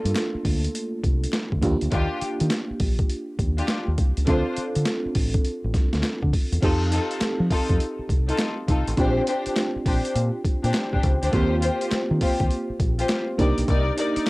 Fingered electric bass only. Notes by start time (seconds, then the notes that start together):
0.05 G2
0.35 muted fingered electric bass stroke
0.45 D2
1.03 C2
1.52 D2
1.63 D#2
1.82 D2
1.92 D#2
2.22 muted fingered electric bass stroke
2.41 D#3
2.70 muted fingered electric bass stroke
2.80 A#1
3.39 D#2
3.88 D#2
3.98 C2
4.17 C#2
4.27 D2
4.57 muted fingered electric bass stroke
4.76 D3
5.05 muted fingered electric bass stroke
5.15 A1
5.64 A1
5.74 C2
5.94 D2
6.23 D3
6.52 E2
6.63 F2
7.21 muted fingered electric bass stroke
7.40 F3
7.70 F2
7.99 muted fingered electric bass stroke
8.09 C2
8.68 C2
8.87 A1
8.98 A#1
9.46 muted fingered electric bass stroke
9.76 muted fingered electric bass stroke
9.86 A#1
10.15 A#2
10.44 muted fingered electric bass stroke
10.64 A#2
10.93 A#1
11.04 C#2
11.23 D2
11.33 D#2
11.92 muted fingered electric bass stroke
12.11 D#3
12.40 D#2
12.70 muted fingered electric bass stroke
12.80 A#1
13.39 C2
13.58 B1
13.68 C2
14.16 muted fingered electric bass stroke